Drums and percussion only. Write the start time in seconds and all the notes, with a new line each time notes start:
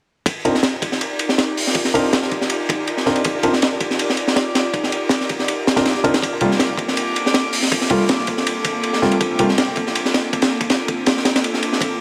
0.26 kick, ride
0.45 ride
0.55 snare
0.63 snare, ride
0.82 kick, ride
0.92 snare
1.01 ride
1.19 ride
1.29 snare
1.38 snare, ride
1.57 open hi-hat
1.67 snare
1.75 kick, ride
1.85 snare
1.95 ride
2.13 snare, ride
2.22 snare
2.31 kick, ride
2.41 snare
2.50 ride
2.69 kick, ride
2.87 ride
2.97 snare
3.06 snare
3.15 ride
3.24 kick, ride
3.43 ride
3.53 snare
3.62 snare, ride
3.80 kick, ride
3.90 snare
3.99 ride
4.10 snare
4.17 ride
4.27 snare
4.36 snare, ride
4.55 snare, ride
4.74 kick, ride
4.83 snare
4.92 ride
5.09 snare, ride
5.20 snare
5.29 kick, ride
5.39 snare
5.48 ride
5.67 snare, ride
5.76 snare, ride
5.86 snare, ride
5.95 snare
6.04 kick, ride
6.14 snare, ride
6.22 kick, ride
6.41 ride
6.51 snare
6.59 snare, ride
6.77 kick, ride
6.88 snare
6.97 ride
7.16 ride
7.26 snare
7.34 snare, ride
7.53 open hi-hat
7.62 snare
7.72 kick, ride
7.81 snare
7.90 ride
8.09 snare, ride
8.19 snare
8.27 kick, ride
8.37 snare
8.47 ride
8.64 kick, ride
8.83 ride
8.93 snare
9.02 snare
9.11 ride
9.21 kick, ride
9.39 ride
9.49 snare
9.58 snare, ride
9.76 kick, ride
9.87 snare
9.95 ride
10.05 snare
10.14 snare, ride
10.33 kick, ride
10.42 snare, ride
10.61 kick, ride
10.70 snare, ride
10.88 kick, ride
11.06 snare, ride
11.17 snare
11.25 snare, ride
11.36 snare, ride
11.44 ride
11.54 snare
11.63 ride
11.73 snare
11.81 kick, ride